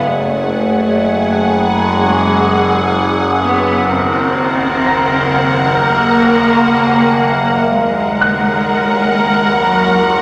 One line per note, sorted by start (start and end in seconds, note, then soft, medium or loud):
0.07 3.85 F#1 medium
0.07 3.86 F#2 soft
0.07 1.98 A3 medium
0.07 3.86 G#4 medium
0.07 3.86 F#5 soft
0.07 3.86 G#5 soft
1.98 2.94 G#3 medium
3.42 3.86 B3 medium
3.88 7.67 F#1 medium
3.88 7.69 D#2 soft
3.88 5.81 C4 medium
3.88 7.68 A#4 medium
3.88 7.68 F#5 medium
3.88 7.69 F#5 soft
4.86 7.68 A#5 soft
4.86 7.68 A#6 soft
5.81 7.72 A#3 medium
7.70 10.22 F#1 medium
7.70 10.22 D#2 medium
7.70 9.58 G#3 medium
7.70 10.22 A#4 medium
7.70 10.22 F#5 medium
8.21 10.22 F#6 soft
9.62 10.22 F#3 medium